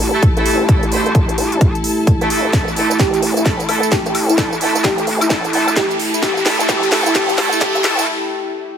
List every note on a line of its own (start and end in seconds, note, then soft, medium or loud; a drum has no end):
0.00 0.11 A1 loud
0.00 8.78 A3 medium
0.00 8.07 E4 medium
0.00 8.78 E4 medium
0.00 2.52 G4 medium
0.00 8.07 A4 medium
0.00 8.07 A5 medium
0.14 0.24 A3 medium
0.14 0.24 E4 medium
0.14 0.24 A4 loud
0.23 kick loud
0.23 closed hi-hat medium
0.37 0.81 A1 loud
0.37 0.56 A3 medium
0.37 0.56 E4 medium
0.37 0.56 A4 loud
0.37 closed hi-hat soft
0.46 open hi-hat loud
0.69 0.84 A3 medium
0.69 0.84 E4 medium
0.69 0.84 A4 medium
0.69 kick loud
0.69 closed hi-hat medium
0.83 1.04 A1 loud
0.83 closed hi-hat soft
0.92 1.13 A3 medium
0.92 1.13 E4 medium
0.92 1.13 C5 medium
0.92 open hi-hat loud
1.06 1.37 A1 medium
1.06 closed hi-hat soft
1.15 kick loud
1.15 closed hi-hat medium
1.29 closed hi-hat soft
1.38 1.73 A#1 loud
1.38 open hi-hat loud
1.52 closed hi-hat soft
1.61 kick loud
1.61 closed hi-hat medium
1.75 closed hi-hat soft
1.84 open hi-hat loud
2.07 kick loud
2.07 closed hi-hat medium
2.21 2.42 A#1 loud
2.21 2.29 A3 medium
2.21 2.29 E4 medium
2.21 2.29 A4 loud
2.21 closed hi-hat soft
2.30 2.51 A3 medium
2.30 2.51 E4 medium
2.30 2.51 A4 medium
2.30 open hi-hat loud
2.44 2.52 A1 medium
2.53 2.68 A3 medium
2.53 2.68 E4 medium
2.53 2.68 A4 medium
2.53 6.22 A4 medium
2.53 kick loud
2.53 snare soft
2.53 closed hi-hat medium
2.53 tambourine medium
2.53 riser medium
2.68 2.98 A1 loud
2.68 tambourine soft
2.76 2.97 A3 medium
2.76 2.97 E4 medium
2.76 2.97 A4 medium
2.76 open hi-hat loud
2.91 closed hi-hat soft
2.91 tambourine medium
2.99 3.21 A1 loud
2.99 3.09 G4 medium
2.99 kick loud
2.99 snare medium
2.99 closed hi-hat medium
2.99 tambourine medium
3.14 3.19 G4 medium
3.14 closed hi-hat soft
3.14 tambourine soft
3.23 3.35 A1 loud
3.23 open hi-hat loud
3.37 3.67 A1 medium
3.37 3.42 E4 medium
3.37 closed hi-hat medium
3.37 tambourine medium
3.46 3.61 A3 medium
3.46 3.61 E4 medium
3.46 3.61 A4 medium
3.46 kick loud
3.46 snare soft
3.46 closed hi-hat medium
3.46 tambourine medium
3.60 closed hi-hat soft
3.60 tambourine soft
3.69 3.81 A1 loud
3.69 3.90 A3 medium
3.69 3.90 E4 medium
3.69 3.90 A4 medium
3.69 open hi-hat loud
3.69 high woodblock medium
3.83 tambourine medium
3.92 4.01 G4 medium
3.92 kick loud
3.92 snare medium
3.92 closed hi-hat medium
3.92 tambourine medium
4.06 4.50 A1 loud
4.06 4.12 G4 medium
4.06 closed hi-hat soft
4.06 tambourine soft
4.15 open hi-hat loud
4.15 high woodblock medium
4.29 4.35 E4 medium
4.29 tambourine medium
4.38 4.53 A3 medium
4.38 4.53 E4 medium
4.38 4.53 A4 medium
4.38 kick loud
4.38 snare medium
4.38 closed hi-hat medium
4.38 tambourine medium
4.52 4.73 A1 medium
4.52 tambourine soft
4.61 4.82 A3 medium
4.61 4.82 E4 medium
4.61 4.82 A4 loud
4.61 open hi-hat loud
4.75 5.06 A1 loud
4.75 closed hi-hat soft
4.75 tambourine medium
4.84 4.93 G4 medium
4.84 kick loud
4.84 snare medium
4.84 closed hi-hat medium
4.84 tambourine medium
4.98 5.04 G4 medium
4.98 closed hi-hat medium
4.98 tambourine soft
5.07 5.42 A1 loud
5.07 open hi-hat loud
5.21 5.27 E4 medium
5.21 closed hi-hat medium
5.21 tambourine medium
5.21 high woodblock medium
5.30 5.45 A3 medium
5.30 5.45 E4 medium
5.30 5.45 A4 medium
5.30 kick loud
5.30 snare medium
5.30 closed hi-hat medium
5.30 tambourine medium
5.44 5.88 A#1 loud
5.44 closed hi-hat soft
5.44 tambourine soft
5.53 5.74 A3 medium
5.53 5.74 E4 medium
5.53 5.74 A4 loud
5.53 open hi-hat loud
5.68 tambourine medium
5.68 high woodblock medium
5.76 5.86 G4 medium
5.76 kick loud
5.76 snare medium
5.76 closed hi-hat medium
5.76 tambourine medium
5.91 5.96 G4 medium
5.91 closed hi-hat soft
5.91 tambourine soft
5.99 open hi-hat loud
6.14 6.19 E4 medium
6.14 tambourine medium
6.22 6.35 A1 medium
6.22 6.38 A3 medium
6.22 6.38 E4 medium
6.22 8.78 G4 medium
6.22 6.32 G4 medium
6.22 6.38 A4 medium
6.22 kick loud
6.22 snare medium
6.22 closed hi-hat medium
6.22 tambourine medium
6.37 6.67 A1 medium
6.37 6.42 G4 medium
6.37 tambourine soft
6.46 6.66 A3 loud
6.46 6.66 E4 medium
6.46 6.66 A4 loud
6.46 snare medium
6.46 open hi-hat loud
6.60 6.65 E4 medium
6.60 tambourine medium
6.68 6.90 A1 medium
6.68 6.84 A3 medium
6.68 6.84 E4 medium
6.68 6.78 G4 medium
6.68 6.84 A4 loud
6.68 kick loud
6.68 snare medium
6.68 closed hi-hat medium
6.68 tambourine medium
6.83 6.89 G4 medium
6.83 closed hi-hat medium
6.83 tambourine soft
6.92 7.04 A1 medium
6.92 7.13 A3 medium
6.92 7.13 E4 medium
6.92 7.13 A4 loud
6.92 snare medium
6.92 open hi-hat loud
7.06 7.37 A1 medium
7.06 7.12 E4 medium
7.06 closed hi-hat medium
7.06 tambourine medium
7.15 7.30 A3 medium
7.15 7.30 E4 medium
7.15 7.24 G4 medium
7.15 7.30 A4 loud
7.15 kick loud
7.15 snare medium
7.15 closed hi-hat medium
7.15 tambourine medium
7.29 7.35 G4 medium
7.29 closed hi-hat soft
7.29 tambourine soft
7.38 7.50 A1 loud
7.38 7.59 A3 loud
7.38 7.59 E4 medium
7.38 7.59 A4 loud
7.38 snare medium
7.38 open hi-hat loud
7.38 high woodblock medium
7.52 7.58 E4 medium
7.52 tambourine medium
7.61 7.76 A3 medium
7.61 7.76 E4 medium
7.61 7.70 G4 medium
7.61 7.76 A4 medium
7.61 kick loud
7.61 snare medium
7.61 closed hi-hat medium
7.61 tambourine medium
7.75 8.07 A1 loud
7.75 7.81 G4 medium
7.75 closed hi-hat soft
7.75 tambourine soft
7.84 8.05 A3 medium
7.84 8.05 E4 medium
7.84 8.05 A4 medium
7.84 snare medium
7.84 open hi-hat loud
7.84 high woodblock medium
7.98 8.04 E4 medium
7.98 tambourine medium